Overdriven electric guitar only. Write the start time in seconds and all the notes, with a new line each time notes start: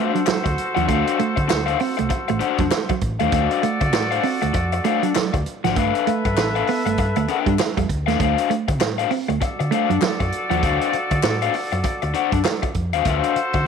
Already playing: D4 F#4 C5 F5
0.13 muted overdriven electric guitar stroke
0.26 muted overdriven electric guitar stroke
0.44 muted overdriven electric guitar stroke
0.75 D4 F#4 C5 F#5
0.86 D4 F#4 C5 F5
1.36 muted overdriven electric guitar stroke
1.48 muted overdriven electric guitar stroke
1.66 D4 F#4 C5 F5
1.79 muted overdriven electric guitar stroke
1.97 muted overdriven electric guitar stroke
2.09 muted overdriven electric guitar stroke
2.28 muted overdriven electric guitar stroke
2.40 D4 F#4 C5 F#5
2.59 muted overdriven electric guitar stroke
2.71 muted overdriven electric guitar stroke
2.89 muted overdriven electric guitar stroke
3.20 D4 F#4 C5 F5
3.32 D4 F#4 C5 F5
3.81 muted overdriven electric guitar stroke
3.93 muted overdriven electric guitar stroke
4.11 D4 F#4 C5 F5
4.23 muted overdriven electric guitar stroke
4.42 muted overdriven electric guitar stroke
4.53 muted overdriven electric guitar stroke
4.73 muted overdriven electric guitar stroke
4.85 D4 F#4 C5 F5
5.03 muted overdriven electric guitar stroke
5.15 muted overdriven electric guitar stroke
5.33 muted overdriven electric guitar stroke
5.64 D4 F#4 C5 F#5
5.77 D4 A4 B4 F5
6.25 muted overdriven electric guitar stroke
6.38 muted overdriven electric guitar stroke
6.56 D4 A4 B4 F5
6.68 muted overdriven electric guitar stroke
6.86 muted overdriven electric guitar stroke
6.98 muted overdriven electric guitar stroke
7.17 muted overdriven electric guitar stroke
7.29 D4 A4 B4 G5
7.47 muted overdriven electric guitar stroke
7.59 muted overdriven electric guitar stroke
7.78 muted overdriven electric guitar stroke
8.06 D4 A4 B4 F5
8.19 D4 F#4 C5 F5
8.68 muted overdriven electric guitar stroke
8.81 muted overdriven electric guitar stroke
8.98 D4 F#4 C5 F5
9.11 muted overdriven electric guitar stroke
9.29 muted overdriven electric guitar stroke
9.41 muted overdriven electric guitar stroke
9.60 muted overdriven electric guitar stroke
9.72 D4 F#4 C5 F5
9.90 muted overdriven electric guitar stroke
10.02 muted overdriven electric guitar stroke
10.20 muted overdriven electric guitar stroke
10.50 D4 F#4 C5 F#5
10.62 D4 F#4 C5 F5
11.11 muted overdriven electric guitar stroke
11.24 muted overdriven electric guitar stroke
11.42 D4 F#4 C5 F5
11.54 muted overdriven electric guitar stroke
11.72 muted overdriven electric guitar stroke
11.84 muted overdriven electric guitar stroke
12.02 muted overdriven electric guitar stroke
12.14 D4 F#4 C5 F#5
12.33 muted overdriven electric guitar stroke
12.45 muted overdriven electric guitar stroke
12.63 muted overdriven electric guitar stroke
12.94 D4 F#4 C5 F5
13.05 C#4 F4 B4 E5
13.17 D4 F#4 C5 F5
13.54 muted overdriven electric guitar stroke